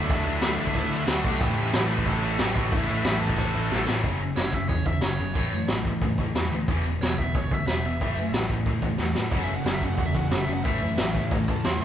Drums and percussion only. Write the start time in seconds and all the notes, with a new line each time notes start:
0.10 kick, crash
0.42 snare, crash
0.67 kick
0.75 kick, crash
1.07 snare, crash
1.25 kick
1.40 kick, crash
1.73 snare, crash
1.98 kick
2.05 kick, crash
2.39 snare, crash
2.56 kick
2.71 kick, crash
3.04 snare, crash
3.30 kick
3.37 kick, crash
3.72 snare
3.88 snare
4.03 kick, open hi-hat
4.37 snare, open hi-hat
4.53 kick
4.69 kick, open hi-hat
4.86 kick
5.01 snare, open hi-hat
5.35 kick, open hi-hat
5.68 snare, open hi-hat
5.85 kick
6.01 kick, open hi-hat
6.18 kick
6.35 snare, open hi-hat
6.68 kick, open hi-hat
7.03 snare, open hi-hat
7.18 kick
7.35 kick, open hi-hat
7.51 kick
7.67 snare, open hi-hat
8.01 kick, open hi-hat
8.34 snare, open hi-hat
8.50 kick
8.65 kick, open hi-hat
8.82 kick
8.98 snare
9.15 snare
9.30 kick, open hi-hat
9.66 snare, open hi-hat
9.81 kick
9.97 kick, open hi-hat
10.15 kick
10.31 snare, open hi-hat
10.65 kick, open hi-hat
10.97 snare, open hi-hat
11.15 kick
11.30 kick, open hi-hat
11.48 kick
11.64 snare, open hi-hat